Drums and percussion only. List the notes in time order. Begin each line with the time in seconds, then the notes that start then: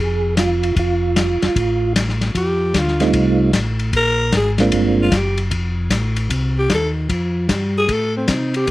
0.37 snare, hi-hat pedal, ride
0.63 ride
0.77 kick, ride
1.16 snare, hi-hat pedal, ride
1.42 snare, ride
1.56 kick, ride
1.96 snare, hi-hat pedal, ride
2.09 snare
2.21 snare, ride
2.35 kick, ride
2.74 kick, snare, hi-hat pedal, ride
2.88 snare
3.00 snare, ride
3.13 kick, ride
3.53 kick, snare, hi-hat pedal, ride
3.79 ride
3.93 kick, ride
4.32 kick, snare, hi-hat pedal, ride
4.58 snare, ride
4.72 kick, ride
5.12 kick, snare, hi-hat pedal, ride
5.38 ride
5.51 kick, ride
5.91 kick, snare, hi-hat pedal, ride
6.16 ride
6.30 kick, ride
6.70 kick, snare, hi-hat pedal, ride
7.10 kick, ride
7.49 kick, snare, hi-hat pedal, ride
7.89 kick, ride
8.28 kick, snare, hi-hat pedal, ride
8.54 ride
8.67 kick, ride